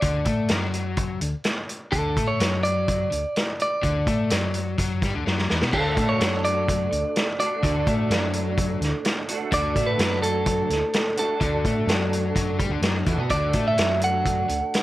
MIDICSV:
0, 0, Header, 1, 6, 480
1, 0, Start_track
1, 0, Key_signature, 2, "major"
1, 0, Tempo, 473934
1, 36, Time_signature, 4, 2, 24, 8
1, 15018, End_track
2, 0, Start_track
2, 0, Title_t, "Clean electric guitar"
2, 0, Program_c, 0, 27
2, 0, Note_on_c, 0, 74, 69
2, 492, Note_off_c, 0, 74, 0
2, 1944, Note_on_c, 0, 69, 92
2, 2304, Note_on_c, 0, 73, 78
2, 2324, Note_off_c, 0, 69, 0
2, 2663, Note_off_c, 0, 73, 0
2, 2667, Note_on_c, 0, 74, 111
2, 3654, Note_off_c, 0, 74, 0
2, 3666, Note_on_c, 0, 74, 81
2, 5056, Note_off_c, 0, 74, 0
2, 5807, Note_on_c, 0, 69, 94
2, 6166, Note_on_c, 0, 73, 87
2, 6177, Note_off_c, 0, 69, 0
2, 6524, Note_off_c, 0, 73, 0
2, 6528, Note_on_c, 0, 74, 104
2, 7480, Note_off_c, 0, 74, 0
2, 7492, Note_on_c, 0, 74, 77
2, 8888, Note_off_c, 0, 74, 0
2, 9660, Note_on_c, 0, 74, 109
2, 9991, Note_on_c, 0, 71, 87
2, 10023, Note_off_c, 0, 74, 0
2, 10351, Note_off_c, 0, 71, 0
2, 10355, Note_on_c, 0, 69, 86
2, 11323, Note_off_c, 0, 69, 0
2, 11335, Note_on_c, 0, 69, 72
2, 12728, Note_off_c, 0, 69, 0
2, 13477, Note_on_c, 0, 74, 99
2, 13848, Note_off_c, 0, 74, 0
2, 13852, Note_on_c, 0, 76, 90
2, 14182, Note_off_c, 0, 76, 0
2, 14220, Note_on_c, 0, 78, 105
2, 15018, Note_off_c, 0, 78, 0
2, 15018, End_track
3, 0, Start_track
3, 0, Title_t, "Clean electric guitar"
3, 0, Program_c, 1, 27
3, 5801, Note_on_c, 1, 57, 80
3, 5812, Note_on_c, 1, 62, 94
3, 5826, Note_on_c, 1, 66, 91
3, 7470, Note_off_c, 1, 66, 0
3, 7474, Note_on_c, 1, 66, 70
3, 7491, Note_off_c, 1, 62, 0
3, 7495, Note_on_c, 1, 62, 73
3, 7504, Note_off_c, 1, 57, 0
3, 7508, Note_on_c, 1, 57, 66
3, 7721, Note_off_c, 1, 57, 0
3, 7725, Note_on_c, 1, 57, 74
3, 7736, Note_off_c, 1, 62, 0
3, 7740, Note_on_c, 1, 62, 99
3, 7748, Note_off_c, 1, 66, 0
3, 7752, Note_on_c, 1, 66, 89
3, 9400, Note_off_c, 1, 66, 0
3, 9404, Note_on_c, 1, 66, 81
3, 9411, Note_off_c, 1, 62, 0
3, 9415, Note_on_c, 1, 62, 73
3, 9428, Note_off_c, 1, 57, 0
3, 9432, Note_on_c, 1, 57, 65
3, 9629, Note_off_c, 1, 57, 0
3, 9633, Note_on_c, 1, 57, 85
3, 9641, Note_off_c, 1, 62, 0
3, 9645, Note_on_c, 1, 62, 89
3, 9654, Note_off_c, 1, 66, 0
3, 9658, Note_on_c, 1, 66, 102
3, 11310, Note_off_c, 1, 66, 0
3, 11314, Note_on_c, 1, 66, 74
3, 11324, Note_off_c, 1, 62, 0
3, 11328, Note_on_c, 1, 62, 74
3, 11343, Note_off_c, 1, 57, 0
3, 11347, Note_on_c, 1, 57, 59
3, 11538, Note_off_c, 1, 57, 0
3, 11542, Note_on_c, 1, 57, 76
3, 11552, Note_off_c, 1, 62, 0
3, 11556, Note_on_c, 1, 62, 94
3, 11565, Note_off_c, 1, 66, 0
3, 11569, Note_on_c, 1, 66, 87
3, 13226, Note_off_c, 1, 66, 0
3, 13231, Note_on_c, 1, 66, 88
3, 13245, Note_off_c, 1, 62, 0
3, 13249, Note_on_c, 1, 62, 67
3, 13258, Note_off_c, 1, 57, 0
3, 13262, Note_on_c, 1, 57, 60
3, 13464, Note_off_c, 1, 57, 0
3, 13468, Note_on_c, 1, 57, 77
3, 13477, Note_off_c, 1, 62, 0
3, 13481, Note_on_c, 1, 62, 78
3, 13493, Note_off_c, 1, 66, 0
3, 13497, Note_on_c, 1, 66, 91
3, 15018, Note_off_c, 1, 57, 0
3, 15018, Note_off_c, 1, 62, 0
3, 15018, Note_off_c, 1, 66, 0
3, 15018, End_track
4, 0, Start_track
4, 0, Title_t, "Overdriven electric guitar"
4, 0, Program_c, 2, 29
4, 23, Note_on_c, 2, 50, 96
4, 250, Note_on_c, 2, 57, 80
4, 263, Note_off_c, 2, 50, 0
4, 497, Note_off_c, 2, 57, 0
4, 516, Note_on_c, 2, 54, 96
4, 1231, Note_off_c, 2, 54, 0
4, 1235, Note_on_c, 2, 50, 60
4, 1357, Note_off_c, 2, 50, 0
4, 1946, Note_on_c, 2, 50, 97
4, 2187, Note_off_c, 2, 50, 0
4, 2191, Note_on_c, 2, 57, 78
4, 2425, Note_on_c, 2, 54, 94
4, 2429, Note_off_c, 2, 57, 0
4, 3143, Note_off_c, 2, 54, 0
4, 3147, Note_on_c, 2, 50, 67
4, 3275, Note_off_c, 2, 50, 0
4, 3875, Note_on_c, 2, 50, 101
4, 4113, Note_off_c, 2, 50, 0
4, 4120, Note_on_c, 2, 57, 83
4, 4355, Note_off_c, 2, 57, 0
4, 4368, Note_on_c, 2, 54, 105
4, 4832, Note_off_c, 2, 54, 0
4, 4844, Note_on_c, 2, 54, 103
4, 5078, Note_off_c, 2, 54, 0
4, 5099, Note_on_c, 2, 55, 86
4, 5205, Note_off_c, 2, 55, 0
4, 5209, Note_on_c, 2, 50, 80
4, 5320, Note_off_c, 2, 50, 0
4, 5327, Note_on_c, 2, 54, 94
4, 5559, Note_off_c, 2, 54, 0
4, 5574, Note_on_c, 2, 52, 81
4, 5682, Note_off_c, 2, 52, 0
4, 5684, Note_on_c, 2, 59, 99
4, 5798, Note_off_c, 2, 59, 0
4, 5801, Note_on_c, 2, 50, 95
4, 6036, Note_off_c, 2, 50, 0
4, 6054, Note_on_c, 2, 57, 90
4, 6281, Note_on_c, 2, 54, 104
4, 6283, Note_off_c, 2, 57, 0
4, 6996, Note_off_c, 2, 54, 0
4, 7004, Note_on_c, 2, 50, 64
4, 7125, Note_off_c, 2, 50, 0
4, 7735, Note_on_c, 2, 50, 104
4, 7963, Note_off_c, 2, 50, 0
4, 7969, Note_on_c, 2, 57, 78
4, 8200, Note_off_c, 2, 57, 0
4, 8217, Note_on_c, 2, 54, 113
4, 8924, Note_off_c, 2, 54, 0
4, 8931, Note_on_c, 2, 50, 66
4, 9048, Note_off_c, 2, 50, 0
4, 9641, Note_on_c, 2, 50, 106
4, 9875, Note_off_c, 2, 50, 0
4, 9882, Note_on_c, 2, 57, 85
4, 10116, Note_off_c, 2, 57, 0
4, 10116, Note_on_c, 2, 54, 101
4, 10833, Note_off_c, 2, 54, 0
4, 10849, Note_on_c, 2, 50, 62
4, 10966, Note_off_c, 2, 50, 0
4, 11560, Note_on_c, 2, 50, 92
4, 11794, Note_off_c, 2, 50, 0
4, 11809, Note_on_c, 2, 57, 90
4, 12033, Note_on_c, 2, 54, 89
4, 12039, Note_off_c, 2, 57, 0
4, 12502, Note_off_c, 2, 54, 0
4, 12514, Note_on_c, 2, 54, 98
4, 12747, Note_on_c, 2, 55, 90
4, 12751, Note_off_c, 2, 54, 0
4, 12867, Note_off_c, 2, 55, 0
4, 12869, Note_on_c, 2, 50, 90
4, 12989, Note_off_c, 2, 50, 0
4, 12997, Note_on_c, 2, 54, 93
4, 13228, Note_off_c, 2, 54, 0
4, 13232, Note_on_c, 2, 52, 94
4, 13348, Note_on_c, 2, 59, 96
4, 13350, Note_off_c, 2, 52, 0
4, 13468, Note_off_c, 2, 59, 0
4, 13470, Note_on_c, 2, 50, 103
4, 13709, Note_off_c, 2, 50, 0
4, 13716, Note_on_c, 2, 57, 94
4, 13948, Note_on_c, 2, 54, 99
4, 13952, Note_off_c, 2, 57, 0
4, 14667, Note_off_c, 2, 54, 0
4, 14672, Note_on_c, 2, 50, 71
4, 14797, Note_off_c, 2, 50, 0
4, 15018, End_track
5, 0, Start_track
5, 0, Title_t, "Fingered electric bass"
5, 0, Program_c, 3, 33
5, 32, Note_on_c, 3, 38, 77
5, 255, Note_off_c, 3, 38, 0
5, 261, Note_on_c, 3, 45, 78
5, 492, Note_off_c, 3, 45, 0
5, 504, Note_on_c, 3, 42, 90
5, 1192, Note_off_c, 3, 42, 0
5, 1224, Note_on_c, 3, 38, 60
5, 1343, Note_off_c, 3, 38, 0
5, 1951, Note_on_c, 3, 38, 71
5, 2179, Note_off_c, 3, 38, 0
5, 2194, Note_on_c, 3, 45, 75
5, 2421, Note_off_c, 3, 45, 0
5, 2433, Note_on_c, 3, 42, 96
5, 3118, Note_off_c, 3, 42, 0
5, 3166, Note_on_c, 3, 38, 68
5, 3277, Note_off_c, 3, 38, 0
5, 3878, Note_on_c, 3, 38, 90
5, 4104, Note_off_c, 3, 38, 0
5, 4121, Note_on_c, 3, 45, 71
5, 4346, Note_off_c, 3, 45, 0
5, 4373, Note_on_c, 3, 42, 88
5, 4816, Note_off_c, 3, 42, 0
5, 4845, Note_on_c, 3, 42, 87
5, 5069, Note_off_c, 3, 42, 0
5, 5094, Note_on_c, 3, 43, 83
5, 5202, Note_off_c, 3, 43, 0
5, 5215, Note_on_c, 3, 38, 90
5, 5322, Note_off_c, 3, 38, 0
5, 5336, Note_on_c, 3, 42, 86
5, 5554, Note_off_c, 3, 42, 0
5, 5581, Note_on_c, 3, 40, 84
5, 5685, Note_off_c, 3, 40, 0
5, 5694, Note_on_c, 3, 47, 91
5, 5798, Note_off_c, 3, 47, 0
5, 5804, Note_on_c, 3, 38, 76
5, 6028, Note_off_c, 3, 38, 0
5, 6047, Note_on_c, 3, 45, 72
5, 6270, Note_off_c, 3, 45, 0
5, 6282, Note_on_c, 3, 42, 81
5, 6963, Note_off_c, 3, 42, 0
5, 7011, Note_on_c, 3, 38, 76
5, 7120, Note_off_c, 3, 38, 0
5, 7724, Note_on_c, 3, 38, 93
5, 7948, Note_off_c, 3, 38, 0
5, 7970, Note_on_c, 3, 45, 81
5, 8191, Note_off_c, 3, 45, 0
5, 8197, Note_on_c, 3, 42, 96
5, 8880, Note_off_c, 3, 42, 0
5, 8913, Note_on_c, 3, 38, 74
5, 9030, Note_off_c, 3, 38, 0
5, 9648, Note_on_c, 3, 38, 76
5, 9869, Note_off_c, 3, 38, 0
5, 9877, Note_on_c, 3, 45, 77
5, 10103, Note_off_c, 3, 45, 0
5, 10112, Note_on_c, 3, 42, 87
5, 10797, Note_off_c, 3, 42, 0
5, 10835, Note_on_c, 3, 38, 67
5, 10951, Note_off_c, 3, 38, 0
5, 11554, Note_on_c, 3, 38, 81
5, 11782, Note_off_c, 3, 38, 0
5, 11798, Note_on_c, 3, 45, 72
5, 12008, Note_off_c, 3, 45, 0
5, 12014, Note_on_c, 3, 42, 97
5, 12474, Note_off_c, 3, 42, 0
5, 12515, Note_on_c, 3, 42, 89
5, 12742, Note_off_c, 3, 42, 0
5, 12760, Note_on_c, 3, 43, 81
5, 12850, Note_off_c, 3, 43, 0
5, 12857, Note_on_c, 3, 38, 96
5, 12971, Note_off_c, 3, 38, 0
5, 12977, Note_on_c, 3, 42, 82
5, 13212, Note_off_c, 3, 42, 0
5, 13235, Note_on_c, 3, 40, 92
5, 13334, Note_off_c, 3, 40, 0
5, 13340, Note_on_c, 3, 47, 91
5, 13462, Note_off_c, 3, 47, 0
5, 13479, Note_on_c, 3, 38, 92
5, 13704, Note_off_c, 3, 38, 0
5, 13714, Note_on_c, 3, 45, 74
5, 13941, Note_off_c, 3, 45, 0
5, 13963, Note_on_c, 3, 42, 97
5, 14642, Note_off_c, 3, 42, 0
5, 14678, Note_on_c, 3, 38, 73
5, 14791, Note_off_c, 3, 38, 0
5, 15018, End_track
6, 0, Start_track
6, 0, Title_t, "Drums"
6, 20, Note_on_c, 9, 42, 75
6, 25, Note_on_c, 9, 36, 95
6, 121, Note_off_c, 9, 42, 0
6, 127, Note_off_c, 9, 36, 0
6, 257, Note_on_c, 9, 42, 58
6, 264, Note_on_c, 9, 36, 96
6, 358, Note_off_c, 9, 42, 0
6, 365, Note_off_c, 9, 36, 0
6, 491, Note_on_c, 9, 42, 85
6, 502, Note_on_c, 9, 38, 98
6, 593, Note_off_c, 9, 42, 0
6, 604, Note_off_c, 9, 38, 0
6, 745, Note_on_c, 9, 42, 56
6, 847, Note_off_c, 9, 42, 0
6, 980, Note_on_c, 9, 42, 74
6, 986, Note_on_c, 9, 36, 102
6, 1082, Note_off_c, 9, 42, 0
6, 1087, Note_off_c, 9, 36, 0
6, 1226, Note_on_c, 9, 42, 57
6, 1328, Note_off_c, 9, 42, 0
6, 1458, Note_on_c, 9, 42, 65
6, 1469, Note_on_c, 9, 38, 93
6, 1559, Note_off_c, 9, 42, 0
6, 1570, Note_off_c, 9, 38, 0
6, 1712, Note_on_c, 9, 42, 57
6, 1814, Note_off_c, 9, 42, 0
6, 1952, Note_on_c, 9, 36, 92
6, 1954, Note_on_c, 9, 42, 74
6, 2053, Note_off_c, 9, 36, 0
6, 2055, Note_off_c, 9, 42, 0
6, 2196, Note_on_c, 9, 36, 100
6, 2197, Note_on_c, 9, 42, 64
6, 2297, Note_off_c, 9, 36, 0
6, 2299, Note_off_c, 9, 42, 0
6, 2432, Note_on_c, 9, 42, 84
6, 2444, Note_on_c, 9, 38, 94
6, 2534, Note_off_c, 9, 42, 0
6, 2545, Note_off_c, 9, 38, 0
6, 2680, Note_on_c, 9, 42, 52
6, 2781, Note_off_c, 9, 42, 0
6, 2917, Note_on_c, 9, 42, 76
6, 2920, Note_on_c, 9, 36, 103
6, 3018, Note_off_c, 9, 42, 0
6, 3021, Note_off_c, 9, 36, 0
6, 3160, Note_on_c, 9, 42, 53
6, 3261, Note_off_c, 9, 42, 0
6, 3404, Note_on_c, 9, 42, 65
6, 3415, Note_on_c, 9, 38, 88
6, 3505, Note_off_c, 9, 42, 0
6, 3516, Note_off_c, 9, 38, 0
6, 3642, Note_on_c, 9, 42, 51
6, 3743, Note_off_c, 9, 42, 0
6, 3881, Note_on_c, 9, 42, 68
6, 3882, Note_on_c, 9, 36, 84
6, 3982, Note_off_c, 9, 42, 0
6, 3983, Note_off_c, 9, 36, 0
6, 4122, Note_on_c, 9, 36, 104
6, 4122, Note_on_c, 9, 42, 59
6, 4223, Note_off_c, 9, 36, 0
6, 4223, Note_off_c, 9, 42, 0
6, 4358, Note_on_c, 9, 42, 78
6, 4369, Note_on_c, 9, 38, 98
6, 4459, Note_off_c, 9, 42, 0
6, 4470, Note_off_c, 9, 38, 0
6, 4596, Note_on_c, 9, 42, 52
6, 4698, Note_off_c, 9, 42, 0
6, 4845, Note_on_c, 9, 36, 99
6, 4848, Note_on_c, 9, 42, 86
6, 4946, Note_off_c, 9, 36, 0
6, 4950, Note_off_c, 9, 42, 0
6, 5086, Note_on_c, 9, 36, 96
6, 5088, Note_on_c, 9, 42, 50
6, 5099, Note_on_c, 9, 38, 25
6, 5188, Note_off_c, 9, 36, 0
6, 5189, Note_off_c, 9, 42, 0
6, 5200, Note_off_c, 9, 38, 0
6, 5337, Note_on_c, 9, 38, 50
6, 5438, Note_off_c, 9, 38, 0
6, 5452, Note_on_c, 9, 38, 49
6, 5553, Note_off_c, 9, 38, 0
6, 5571, Note_on_c, 9, 38, 75
6, 5672, Note_off_c, 9, 38, 0
6, 5687, Note_on_c, 9, 38, 69
6, 5789, Note_off_c, 9, 38, 0
6, 5803, Note_on_c, 9, 49, 84
6, 5805, Note_on_c, 9, 36, 92
6, 5905, Note_off_c, 9, 49, 0
6, 5906, Note_off_c, 9, 36, 0
6, 6046, Note_on_c, 9, 42, 57
6, 6047, Note_on_c, 9, 36, 108
6, 6147, Note_off_c, 9, 42, 0
6, 6148, Note_off_c, 9, 36, 0
6, 6286, Note_on_c, 9, 42, 81
6, 6297, Note_on_c, 9, 38, 111
6, 6388, Note_off_c, 9, 42, 0
6, 6399, Note_off_c, 9, 38, 0
6, 6529, Note_on_c, 9, 42, 56
6, 6631, Note_off_c, 9, 42, 0
6, 6770, Note_on_c, 9, 36, 105
6, 6774, Note_on_c, 9, 42, 81
6, 6872, Note_off_c, 9, 36, 0
6, 6875, Note_off_c, 9, 42, 0
6, 7013, Note_on_c, 9, 42, 48
6, 7114, Note_off_c, 9, 42, 0
6, 7249, Note_on_c, 9, 42, 67
6, 7261, Note_on_c, 9, 38, 105
6, 7351, Note_off_c, 9, 42, 0
6, 7362, Note_off_c, 9, 38, 0
6, 7494, Note_on_c, 9, 42, 60
6, 7595, Note_off_c, 9, 42, 0
6, 7730, Note_on_c, 9, 36, 93
6, 7733, Note_on_c, 9, 42, 73
6, 7832, Note_off_c, 9, 36, 0
6, 7834, Note_off_c, 9, 42, 0
6, 7969, Note_on_c, 9, 42, 61
6, 7970, Note_on_c, 9, 36, 110
6, 8071, Note_off_c, 9, 42, 0
6, 8072, Note_off_c, 9, 36, 0
6, 8211, Note_on_c, 9, 42, 80
6, 8222, Note_on_c, 9, 38, 100
6, 8313, Note_off_c, 9, 42, 0
6, 8324, Note_off_c, 9, 38, 0
6, 8441, Note_on_c, 9, 42, 57
6, 8543, Note_off_c, 9, 42, 0
6, 8687, Note_on_c, 9, 36, 107
6, 8687, Note_on_c, 9, 42, 82
6, 8788, Note_off_c, 9, 36, 0
6, 8788, Note_off_c, 9, 42, 0
6, 8931, Note_on_c, 9, 42, 51
6, 8943, Note_on_c, 9, 38, 28
6, 9033, Note_off_c, 9, 42, 0
6, 9044, Note_off_c, 9, 38, 0
6, 9163, Note_on_c, 9, 42, 75
6, 9174, Note_on_c, 9, 38, 95
6, 9264, Note_off_c, 9, 42, 0
6, 9275, Note_off_c, 9, 38, 0
6, 9404, Note_on_c, 9, 42, 64
6, 9505, Note_off_c, 9, 42, 0
6, 9639, Note_on_c, 9, 42, 81
6, 9643, Note_on_c, 9, 36, 95
6, 9740, Note_off_c, 9, 42, 0
6, 9744, Note_off_c, 9, 36, 0
6, 9883, Note_on_c, 9, 36, 99
6, 9885, Note_on_c, 9, 42, 65
6, 9985, Note_off_c, 9, 36, 0
6, 9986, Note_off_c, 9, 42, 0
6, 10119, Note_on_c, 9, 42, 83
6, 10130, Note_on_c, 9, 38, 117
6, 10220, Note_off_c, 9, 42, 0
6, 10231, Note_off_c, 9, 38, 0
6, 10364, Note_on_c, 9, 42, 64
6, 10465, Note_off_c, 9, 42, 0
6, 10594, Note_on_c, 9, 42, 88
6, 10597, Note_on_c, 9, 36, 98
6, 10695, Note_off_c, 9, 42, 0
6, 10699, Note_off_c, 9, 36, 0
6, 10840, Note_on_c, 9, 42, 48
6, 10851, Note_on_c, 9, 38, 26
6, 10941, Note_off_c, 9, 42, 0
6, 10952, Note_off_c, 9, 38, 0
6, 11075, Note_on_c, 9, 42, 75
6, 11086, Note_on_c, 9, 38, 105
6, 11176, Note_off_c, 9, 42, 0
6, 11187, Note_off_c, 9, 38, 0
6, 11316, Note_on_c, 9, 42, 57
6, 11417, Note_off_c, 9, 42, 0
6, 11554, Note_on_c, 9, 42, 64
6, 11556, Note_on_c, 9, 36, 98
6, 11655, Note_off_c, 9, 42, 0
6, 11657, Note_off_c, 9, 36, 0
6, 11797, Note_on_c, 9, 36, 99
6, 11801, Note_on_c, 9, 42, 61
6, 11899, Note_off_c, 9, 36, 0
6, 11902, Note_off_c, 9, 42, 0
6, 12039, Note_on_c, 9, 42, 79
6, 12050, Note_on_c, 9, 38, 114
6, 12140, Note_off_c, 9, 42, 0
6, 12151, Note_off_c, 9, 38, 0
6, 12284, Note_on_c, 9, 42, 59
6, 12386, Note_off_c, 9, 42, 0
6, 12516, Note_on_c, 9, 36, 101
6, 12516, Note_on_c, 9, 42, 90
6, 12617, Note_off_c, 9, 36, 0
6, 12618, Note_off_c, 9, 42, 0
6, 12756, Note_on_c, 9, 36, 95
6, 12757, Note_on_c, 9, 42, 60
6, 12858, Note_off_c, 9, 36, 0
6, 12858, Note_off_c, 9, 42, 0
6, 12988, Note_on_c, 9, 42, 71
6, 12999, Note_on_c, 9, 38, 97
6, 13089, Note_off_c, 9, 42, 0
6, 13100, Note_off_c, 9, 38, 0
6, 13231, Note_on_c, 9, 42, 60
6, 13234, Note_on_c, 9, 36, 95
6, 13332, Note_off_c, 9, 42, 0
6, 13335, Note_off_c, 9, 36, 0
6, 13468, Note_on_c, 9, 42, 77
6, 13474, Note_on_c, 9, 36, 91
6, 13570, Note_off_c, 9, 42, 0
6, 13576, Note_off_c, 9, 36, 0
6, 13705, Note_on_c, 9, 42, 62
6, 13713, Note_on_c, 9, 36, 101
6, 13806, Note_off_c, 9, 42, 0
6, 13815, Note_off_c, 9, 36, 0
6, 13954, Note_on_c, 9, 42, 91
6, 13966, Note_on_c, 9, 38, 109
6, 14056, Note_off_c, 9, 42, 0
6, 14067, Note_off_c, 9, 38, 0
6, 14194, Note_on_c, 9, 42, 63
6, 14295, Note_off_c, 9, 42, 0
6, 14437, Note_on_c, 9, 42, 81
6, 14438, Note_on_c, 9, 36, 90
6, 14539, Note_off_c, 9, 42, 0
6, 14540, Note_off_c, 9, 36, 0
6, 14679, Note_on_c, 9, 42, 50
6, 14780, Note_off_c, 9, 42, 0
6, 14927, Note_on_c, 9, 42, 79
6, 14938, Note_on_c, 9, 38, 90
6, 15018, Note_off_c, 9, 38, 0
6, 15018, Note_off_c, 9, 42, 0
6, 15018, End_track
0, 0, End_of_file